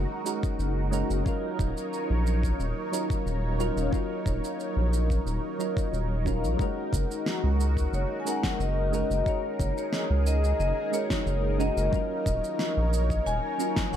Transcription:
Already playing: synth keys G#3 C#4 D#4 F#4 A#4, analog synth pad D#4 F#4 A#4
0.25 synth keys G#3 C#4 D#4 F#4 A#4, shaker
0.43 kick, shaker
0.59 analog synth bass F#1, shaker
0.91 synth keys G#3 C#4 D#4 F#4 A#4, shaker
1.10 analog synth bass F#1, shaker
1.23 synth keys F#3 C#4 D#4 F4, analog synth pad D#4 A#4 C#5, kick, shaker
1.28 synth keys A#4
1.59 analog synth bass D#1, kick, shaker
1.77 shaker
1.93 shaker
2.10 analog synth bass A#1
2.27 shaker
2.43 kick, shaker
2.60 analog synth bass D#1, shaker
2.92 synth keys F#3 C#4 D#4 F4 A#4, shaker
3.10 kick, shaker
3.26 analog synth bass D#1, shaker
3.58 synth keys F#3 C#4 D#4 F4 A#4, shaker
3.77 analog synth bass D#1, shaker
3.90 synth keys F#3 C#4 D#4 F4, kick, shaker
3.95 synth keys A#4
4.26 analog synth bass D#1, kick, shaker
4.44 shaker
4.60 shaker
4.76 analog synth bass A#1
4.93 shaker
5.10 kick, shaker
5.26 analog synth bass D#1, shaker
5.58 synth keys F#3 C#4 D#4 F4 A#4, shaker
5.77 kick, shaker
5.93 analog synth bass D#1, shaker
6.25 synth keys F#3 C#4 D#4 F4 A#4, kick, shaker
6.43 analog synth bass A#1, shaker
6.57 synth keys G#3 C#4 D#4 F#4, analog synth pad F#4, kick, shaker
6.62 synth keys A#4
6.93 analog synth bass F#1, kick, shaker
7.11 shaker
7.26 snare, shaker
7.44 analog synth bass C#2
7.61 shaker
7.77 kick, shaker
7.93 analog synth bass F#1, vibraphone C#5, shaker
8.20 vibraphone G#5
8.25 synth keys G#3 C#4 D#4 F#4 A#4, vibraphone F#5, shaker
8.43 kick, snare, shaker
8.60 analog synth bass F#1, vibraphone D#5, shaker
8.92 synth keys G#3 C#4 D#4 F#4 A#4, vibraphone D#5, shaker
9.10 analog synth bass F#1, shaker
9.24 synth keys G#3 C#4 D#4 F#4, analog synth pad G#4, vibraphone C#5, kick, shaker
9.29 synth keys A#4
9.59 analog synth bass F#1, kick, shaker
9.78 vibraphone C#5, shaker
9.93 snare, shaker
10.10 analog synth bass C#2
10.27 vibraphone D#5, shaker
10.44 shaker
10.59 analog synth bass F#1, vibraphone D#5, shaker
10.92 synth keys G#3 C#4 D#4 F#4 A#4, vibraphone C#5, shaker
11.10 kick, snare, shaker
11.26 analog synth bass F#1, shaker
11.58 synth keys G#3 C#4 D#4 F#4 A#4, vibraphone D#5, shaker
11.77 analog synth bass F#1, shaker
11.91 synth keys F#3 C#4 D#4 F4, analog synth pad C#5, kick, shaker
11.96 synth keys A#4
12.26 analog synth bass D#1, kick, shaker
12.44 shaker
12.59 snare, shaker
12.77 analog synth bass A#1
12.93 shaker
13.10 kick, shaker
13.26 analog synth bass D#1, vibraphone G#5, shaker
13.58 synth keys F#3 C#4 D#4 F4 A#4, shaker
13.76 kick, snare, shaker
13.93 analog synth bass D#1, vibraphone F#5, shaker

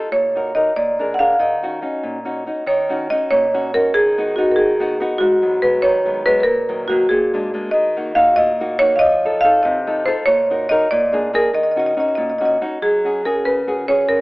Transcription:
0.12 nylon-string guitar A#2, marimba C#5
0.35 nylon-string guitar D#4 F#4 A#4
0.55 nylon-string guitar D#4 F#4 A#4, marimba D#5
0.76 nylon-string guitar A#2, marimba D5
0.99 nylon-string guitar D4 G#4 A#4
1.14 marimba F#5
1.19 nylon-string guitar D4 G#4 A#4, marimba F5
1.33 marimba F5
1.39 nylon-string guitar D#3, marimba D#5
1.63 nylon-string guitar C#4 D#4 F#4
1.82 nylon-string guitar C#4 D#4 F#4
2.03 nylon-string guitar A#2
2.25 nylon-string guitar C#4 D#4 F#4
2.46 nylon-string guitar C#4 D#4 F#4
2.66 nylon-string guitar D#3, marimba C#5
2.89 nylon-string guitar C#4 D#4 F#4
3.10 nylon-string guitar C#4 D#4 F#4, marimba D#5
3.31 nylon-string guitar A#2, marimba C#5
3.54 nylon-string guitar C#4 D#4 F#4
3.74 nylon-string guitar C#4 D#4 F#4, marimba A#4
3.94 nylon-string guitar D#3, marimba G#4
4.18 nylon-string guitar B3 D#4 F#4
4.36 nylon-string guitar B3 D#4 F#4, marimba F#4
4.51 marimba A#4
4.56 nylon-string guitar D#3, marimba G#4
4.80 nylon-string guitar B3 D#4 F#4
5.00 nylon-string guitar B3 D#4 F#4
5.18 nylon-string guitar G#2, marimba F#4
5.42 nylon-string guitar F#3 G#3 B3
5.62 nylon-string guitar F#3 G#3 B3, marimba B4
5.82 nylon-string guitar D#3, marimba C#5
6.05 nylon-string guitar F#3 G#3 B3
6.25 nylon-string guitar F#3 G#3 B3, marimba B4
6.40 marimba A#4 B4
6.45 nylon-string guitar A#2
6.69 nylon-string guitar D#3 F#3 A#3
6.88 nylon-string guitar D#3 F#3 A#3, marimba F#4
7.09 nylon-string guitar A#2, marimba G#4
7.34 nylon-string guitar G#3 A#3 D4
7.54 nylon-string guitar G#3 A#3 D4
7.71 nylon-string guitar D#3, marimba D#5
7.97 nylon-string guitar A#3 D#4 F#4
8.15 nylon-string guitar A#3 D#4 F#4, marimba F5
8.36 nylon-string guitar A#2, marimba D#5
8.60 nylon-string guitar A#3 D#4 F#4
8.79 nylon-string guitar A#3 D#4 F#4, marimba C#5
8.96 marimba D#5 F5
9.01 nylon-string guitar F3
9.25 nylon-string guitar D#4 F4 A4
9.41 nylon-string guitar D#4, marimba F5
9.45 nylon-string guitar F4 A4
9.63 nylon-string guitar C3, marimba D#5
9.87 nylon-string guitar D#4 F4 A4
10.06 nylon-string guitar D#4 F4 A4, marimba C5
10.26 nylon-string guitar A#2, marimba C#5
10.50 nylon-string guitar D#4 F#4 A#4
10.69 nylon-string guitar D#4 F#4 A#4, marimba D#5
10.91 nylon-string guitar A#2, marimba D5
11.13 nylon-string guitar A#3 D4 G#4
11.33 nylon-string guitar A#3 D4 G#4, marimba A#4
11.53 nylon-string guitar D#3, marimba D#5
11.63 marimba D#5
11.71 marimba D#5
11.76 nylon-string guitar C#4 D#4 F#4, marimba D#5
11.86 marimba D#5
11.95 nylon-string guitar C#4 D#4 F#4, marimba D#5
12.00 marimba D#5
12.08 marimba D#5
12.15 nylon-string guitar A#2, marimba D#5
12.22 marimba D#5
12.30 marimba D#5
12.38 nylon-string guitar C#4 D#4 F#4, marimba D#5
12.45 marimba D#5
12.61 nylon-string guitar C#4 D#4 F#4
12.82 nylon-string guitar F#3, marimba G#4
13.04 nylon-string guitar C#4 F#4 G#4
13.25 nylon-string guitar C#4 F#4 G#4, marimba A#4
13.45 nylon-string guitar C#3, marimba B4
13.67 nylon-string guitar C#4 F#4 G#4
13.88 nylon-string guitar C#4 F#4 G#4, marimba C#5
14.08 nylon-string guitar C#3, marimba A#4

